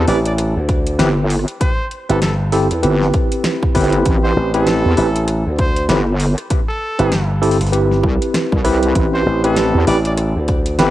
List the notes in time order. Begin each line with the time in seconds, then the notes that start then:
0.07 A1 C4 E4 G4 B4 D5, open hi-hat
0.25 D5, closed hi-hat
0.38 cross-stick, closed hi-hat
0.56 D2
0.69 kick, closed hi-hat
0.87 closed hi-hat
0.99 G1 C4 E4 G4 B4, snare, closed hi-hat
1.30 open hi-hat
1.39 cross-stick
1.48 closed hi-hat
1.61 C5, kick, closed hi-hat
1.91 closed hi-hat
2.09 G1 C4 E4 G4 A4 B4, closed hi-hat
2.22 A4, snare, closed hi-hat
2.52 C4 E4 G4 A4, open hi-hat
2.71 E2, closed hi-hat
2.83 G1 C4 E4 G4 B4, closed hi-hat
3.02 snare
3.14 kick, closed hi-hat
3.32 closed hi-hat
3.44 cross-stick, snare, closed hi-hat
3.63 kick
3.75 G1 C4 E4 G4 B4, kick, cross-stick, open hi-hat
3.77 open hi-hat
3.81 open hi-hat
3.84 open hi-hat
3.90 closed hi-hat, open hi-hat
4.06 A1, kick, closed hi-hat
4.24 C5
4.36 A1
4.54 C4 E4 G4 A4 B4, closed hi-hat
4.67 snare, closed hi-hat
4.85 E2
4.97 A1 C4 E4 G4 B4, open hi-hat
5.16 closed hi-hat
5.28 cross-stick, closed hi-hat
5.47 D2
5.59 C5, kick, closed hi-hat
5.76 closed hi-hat
5.89 G1 C4 E4 G4 B4, snare, closed hi-hat
6.20 open hi-hat
6.38 cross-stick, closed hi-hat
6.50 kick, closed hi-hat
6.68 A4
6.99 G1 C4 E4 G4 B4, closed hi-hat
7.12 snare, closed hi-hat
7.42 C4 E4 G4 A4, open hi-hat
7.51 open hi-hat
7.61 G1, closed hi-hat, open hi-hat
7.67 open hi-hat
7.72 C4 E4 G4 B4, closed hi-hat
7.91 snare
8.04 C2, kick
8.22 closed hi-hat
8.34 cross-stick, snare, closed hi-hat
8.52 C2, kick
8.64 C4 E4 G4 B4, cross-stick, open hi-hat
8.83 closed hi-hat
8.95 A1, kick, closed hi-hat
9.14 C5
9.26 A1
9.44 C4 E4 G4 A4 B4, closed hi-hat
9.56 snare, closed hi-hat
9.74 E2
9.87 A1 C4 E4 G4 B4 D5, open hi-hat
10.05 D5, closed hi-hat
10.17 cross-stick, closed hi-hat
10.36 D2
10.48 kick, closed hi-hat
10.66 closed hi-hat
10.79 G1 C4 E4 G4 B4, snare, closed hi-hat